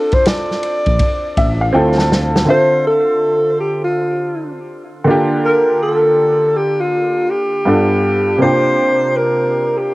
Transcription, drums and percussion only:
0, 0, Header, 1, 2, 480
1, 0, Start_track
1, 0, Key_signature, -1, "minor"
1, 0, Tempo, 740741
1, 1609, Time_signature, 4, 2, 24, 8
1, 6442, End_track
2, 0, Start_track
2, 0, Title_t, "Drums"
2, 75, Note_on_c, 9, 51, 43
2, 83, Note_on_c, 9, 36, 92
2, 140, Note_off_c, 9, 51, 0
2, 148, Note_off_c, 9, 36, 0
2, 165, Note_on_c, 9, 44, 47
2, 165, Note_on_c, 9, 51, 67
2, 172, Note_on_c, 9, 38, 108
2, 230, Note_off_c, 9, 44, 0
2, 230, Note_off_c, 9, 51, 0
2, 237, Note_off_c, 9, 38, 0
2, 331, Note_on_c, 9, 38, 35
2, 396, Note_off_c, 9, 38, 0
2, 407, Note_on_c, 9, 51, 53
2, 472, Note_off_c, 9, 51, 0
2, 557, Note_on_c, 9, 51, 36
2, 561, Note_on_c, 9, 36, 75
2, 621, Note_off_c, 9, 51, 0
2, 626, Note_off_c, 9, 36, 0
2, 643, Note_on_c, 9, 51, 67
2, 648, Note_on_c, 9, 36, 91
2, 708, Note_off_c, 9, 51, 0
2, 712, Note_off_c, 9, 36, 0
2, 888, Note_on_c, 9, 51, 56
2, 889, Note_on_c, 9, 36, 82
2, 953, Note_off_c, 9, 51, 0
2, 954, Note_off_c, 9, 36, 0
2, 1287, Note_on_c, 9, 38, 56
2, 1352, Note_off_c, 9, 38, 0
2, 1373, Note_on_c, 9, 38, 84
2, 1438, Note_off_c, 9, 38, 0
2, 1527, Note_on_c, 9, 38, 90
2, 1592, Note_off_c, 9, 38, 0
2, 6442, End_track
0, 0, End_of_file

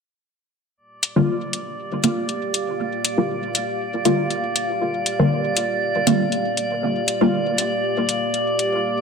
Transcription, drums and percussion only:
0, 0, Header, 1, 2, 480
1, 0, Start_track
1, 0, Key_signature, -2, "minor"
1, 0, Tempo, 504202
1, 740, Time_signature, 4, 2, 24, 8
1, 8578, End_track
2, 0, Start_track
2, 0, Title_t, "Drums"
2, 979, Note_on_c, 9, 42, 76
2, 1075, Note_off_c, 9, 42, 0
2, 1459, Note_on_c, 9, 42, 66
2, 1554, Note_off_c, 9, 42, 0
2, 1938, Note_on_c, 9, 42, 76
2, 2034, Note_off_c, 9, 42, 0
2, 2179, Note_on_c, 9, 42, 28
2, 2274, Note_off_c, 9, 42, 0
2, 2419, Note_on_c, 9, 42, 61
2, 2514, Note_off_c, 9, 42, 0
2, 2899, Note_on_c, 9, 42, 78
2, 2994, Note_off_c, 9, 42, 0
2, 3379, Note_on_c, 9, 42, 66
2, 3474, Note_off_c, 9, 42, 0
2, 3858, Note_on_c, 9, 42, 75
2, 3953, Note_off_c, 9, 42, 0
2, 4098, Note_on_c, 9, 42, 30
2, 4193, Note_off_c, 9, 42, 0
2, 4338, Note_on_c, 9, 42, 64
2, 4433, Note_off_c, 9, 42, 0
2, 4818, Note_on_c, 9, 42, 78
2, 4913, Note_off_c, 9, 42, 0
2, 5298, Note_on_c, 9, 42, 70
2, 5393, Note_off_c, 9, 42, 0
2, 5778, Note_on_c, 9, 42, 81
2, 5873, Note_off_c, 9, 42, 0
2, 6018, Note_on_c, 9, 42, 30
2, 6113, Note_off_c, 9, 42, 0
2, 6258, Note_on_c, 9, 42, 64
2, 6353, Note_off_c, 9, 42, 0
2, 6739, Note_on_c, 9, 42, 78
2, 6834, Note_off_c, 9, 42, 0
2, 7219, Note_on_c, 9, 42, 66
2, 7314, Note_off_c, 9, 42, 0
2, 7699, Note_on_c, 9, 42, 78
2, 7794, Note_off_c, 9, 42, 0
2, 7939, Note_on_c, 9, 42, 30
2, 8034, Note_off_c, 9, 42, 0
2, 8179, Note_on_c, 9, 42, 67
2, 8274, Note_off_c, 9, 42, 0
2, 8578, End_track
0, 0, End_of_file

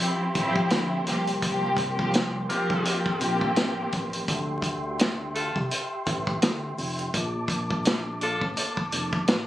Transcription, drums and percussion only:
0, 0, Header, 1, 2, 480
1, 0, Start_track
1, 0, Key_signature, -1, "minor"
1, 0, Tempo, 714286
1, 957, Time_signature, 4, 2, 24, 8
1, 6363, End_track
2, 0, Start_track
2, 0, Title_t, "Drums"
2, 0, Note_on_c, 9, 42, 99
2, 65, Note_off_c, 9, 42, 0
2, 234, Note_on_c, 9, 42, 78
2, 237, Note_on_c, 9, 36, 92
2, 301, Note_off_c, 9, 42, 0
2, 304, Note_off_c, 9, 36, 0
2, 373, Note_on_c, 9, 36, 94
2, 441, Note_off_c, 9, 36, 0
2, 472, Note_on_c, 9, 42, 93
2, 479, Note_on_c, 9, 38, 115
2, 539, Note_off_c, 9, 42, 0
2, 546, Note_off_c, 9, 38, 0
2, 716, Note_on_c, 9, 42, 80
2, 724, Note_on_c, 9, 38, 38
2, 783, Note_off_c, 9, 42, 0
2, 791, Note_off_c, 9, 38, 0
2, 854, Note_on_c, 9, 42, 60
2, 922, Note_off_c, 9, 42, 0
2, 956, Note_on_c, 9, 42, 95
2, 957, Note_on_c, 9, 36, 119
2, 1023, Note_off_c, 9, 42, 0
2, 1025, Note_off_c, 9, 36, 0
2, 1187, Note_on_c, 9, 36, 86
2, 1193, Note_on_c, 9, 42, 79
2, 1254, Note_off_c, 9, 36, 0
2, 1260, Note_off_c, 9, 42, 0
2, 1337, Note_on_c, 9, 36, 94
2, 1404, Note_off_c, 9, 36, 0
2, 1435, Note_on_c, 9, 42, 92
2, 1448, Note_on_c, 9, 38, 107
2, 1502, Note_off_c, 9, 42, 0
2, 1515, Note_off_c, 9, 38, 0
2, 1677, Note_on_c, 9, 42, 65
2, 1744, Note_off_c, 9, 42, 0
2, 1814, Note_on_c, 9, 36, 91
2, 1881, Note_off_c, 9, 36, 0
2, 1917, Note_on_c, 9, 42, 103
2, 1984, Note_off_c, 9, 42, 0
2, 2055, Note_on_c, 9, 36, 89
2, 2122, Note_off_c, 9, 36, 0
2, 2154, Note_on_c, 9, 42, 78
2, 2222, Note_off_c, 9, 42, 0
2, 2293, Note_on_c, 9, 36, 91
2, 2361, Note_off_c, 9, 36, 0
2, 2393, Note_on_c, 9, 42, 91
2, 2400, Note_on_c, 9, 38, 117
2, 2460, Note_off_c, 9, 42, 0
2, 2467, Note_off_c, 9, 38, 0
2, 2637, Note_on_c, 9, 42, 82
2, 2641, Note_on_c, 9, 36, 92
2, 2704, Note_off_c, 9, 42, 0
2, 2709, Note_off_c, 9, 36, 0
2, 2775, Note_on_c, 9, 42, 62
2, 2842, Note_off_c, 9, 42, 0
2, 2876, Note_on_c, 9, 42, 91
2, 2877, Note_on_c, 9, 36, 118
2, 2943, Note_off_c, 9, 42, 0
2, 2945, Note_off_c, 9, 36, 0
2, 3107, Note_on_c, 9, 36, 86
2, 3114, Note_on_c, 9, 42, 80
2, 3174, Note_off_c, 9, 36, 0
2, 3181, Note_off_c, 9, 42, 0
2, 3355, Note_on_c, 9, 42, 90
2, 3368, Note_on_c, 9, 38, 109
2, 3422, Note_off_c, 9, 42, 0
2, 3435, Note_off_c, 9, 38, 0
2, 3597, Note_on_c, 9, 42, 67
2, 3664, Note_off_c, 9, 42, 0
2, 3734, Note_on_c, 9, 36, 95
2, 3802, Note_off_c, 9, 36, 0
2, 3838, Note_on_c, 9, 42, 101
2, 3905, Note_off_c, 9, 42, 0
2, 4075, Note_on_c, 9, 42, 77
2, 4077, Note_on_c, 9, 36, 96
2, 4142, Note_off_c, 9, 42, 0
2, 4144, Note_off_c, 9, 36, 0
2, 4214, Note_on_c, 9, 36, 94
2, 4281, Note_off_c, 9, 36, 0
2, 4314, Note_on_c, 9, 42, 95
2, 4321, Note_on_c, 9, 38, 122
2, 4381, Note_off_c, 9, 42, 0
2, 4388, Note_off_c, 9, 38, 0
2, 4557, Note_on_c, 9, 46, 57
2, 4624, Note_off_c, 9, 46, 0
2, 4696, Note_on_c, 9, 42, 60
2, 4763, Note_off_c, 9, 42, 0
2, 4797, Note_on_c, 9, 42, 92
2, 4798, Note_on_c, 9, 36, 117
2, 4864, Note_off_c, 9, 42, 0
2, 4865, Note_off_c, 9, 36, 0
2, 5027, Note_on_c, 9, 36, 89
2, 5035, Note_on_c, 9, 42, 78
2, 5094, Note_off_c, 9, 36, 0
2, 5102, Note_off_c, 9, 42, 0
2, 5177, Note_on_c, 9, 36, 94
2, 5245, Note_off_c, 9, 36, 0
2, 5276, Note_on_c, 9, 42, 92
2, 5289, Note_on_c, 9, 38, 108
2, 5343, Note_off_c, 9, 42, 0
2, 5356, Note_off_c, 9, 38, 0
2, 5517, Note_on_c, 9, 42, 67
2, 5585, Note_off_c, 9, 42, 0
2, 5654, Note_on_c, 9, 36, 90
2, 5722, Note_off_c, 9, 36, 0
2, 5758, Note_on_c, 9, 42, 101
2, 5825, Note_off_c, 9, 42, 0
2, 5895, Note_on_c, 9, 36, 92
2, 5962, Note_off_c, 9, 36, 0
2, 5995, Note_on_c, 9, 42, 78
2, 6062, Note_off_c, 9, 42, 0
2, 6133, Note_on_c, 9, 36, 94
2, 6201, Note_off_c, 9, 36, 0
2, 6232, Note_on_c, 9, 42, 89
2, 6239, Note_on_c, 9, 38, 113
2, 6300, Note_off_c, 9, 42, 0
2, 6307, Note_off_c, 9, 38, 0
2, 6363, End_track
0, 0, End_of_file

